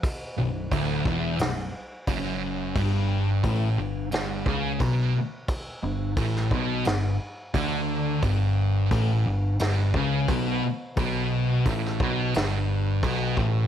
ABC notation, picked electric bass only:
X:1
M:4/4
L:1/8
Q:1/4=88
K:Glyd
V:1 name="Picked electric bass" clef=bass
z B,,,, D,,, E,,, B,,,, z F,,,2 | G,,,2 A,,, G,,, G,,, C,, B,,, z | z G,,, A,,, B,,, G,,, z D,,2 | G,,,2 A,,, G,,, G,,, C,, B,,, z |
B,,,2 A,,, B,,, G,,,2 B,,, A,,, |]